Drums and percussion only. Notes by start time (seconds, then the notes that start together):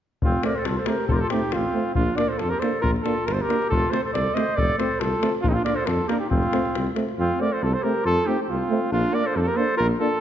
0.22 davul low
0.43 davul high
0.65 davul high
0.86 davul high
1.09 davul low
1.30 davul high
1.52 davul high
1.95 davul low
2.18 davul high
2.39 davul high
2.62 davul high
2.84 davul low
2.96 davul high
3.06 davul high
3.18 davul high
3.28 davul high
3.40 davul high
3.50 davul high
3.62 davul high
3.72 davul low
3.93 davul high
4.15 davul high
4.37 davul high
4.58 davul low
4.80 davul high
5.01 davul high
5.23 davul high
5.44 davul low
5.66 davul high
5.87 davul high
6.09 davul high
6.31 davul low
6.43 davul high
6.53 davul high
6.66 davul high
6.75 davul high
6.87 davul high
6.96 davul high
7.09 davul high